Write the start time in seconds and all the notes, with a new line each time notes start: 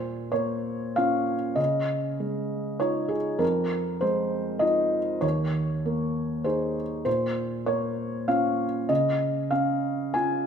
Already playing: A#2 C5
0.32 A#3 C#5
0.96 C#4 F4 F5
1.55 C#3 D#5
2.20 G#3
2.80 D#4 F4 C#5
3.09 G#4
3.39 F2 A#4
4.01 G#3 C5
4.59 D#4 F4 D#5
5.21 D#2 C#5
5.85 A#3
6.44 D#4 G#4 C5
7.05 A#2 C5
7.66 A#3 C#5
8.28 C#4 F4 F5
8.89 C#3 D#5
9.51 C#4 F5
10.14 C#4 F4 G#5